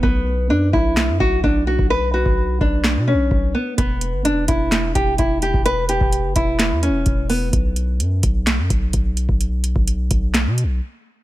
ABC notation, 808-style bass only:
X:1
M:4/4
L:1/16
Q:1/4=128
K:Bm
V:1 name="808-style bass" clef=bass
B,,,4 F,,2 B,,,3 F,, B,,,2 B,,,3 B,,,- | B,,,3 B,,,3 B,,,3 B,,3/2 B,,,3/2 B,,,2 z2 | E,,,3 G,,,3/2 E,,,3/2 E,,,4 E,,,2 E,,,3 E,,,- | E,,,3 E,,,2 F,,, E,,,3 E,,3/2 E,,,3/2 E,,,4 |
B,,,4 F,,2 B,,,3 F,, B,,,2 B,,,3 B,,,- | B,,,3 B,,,3 B,,,3 B,,3/2 B,,,3/2 z4 |]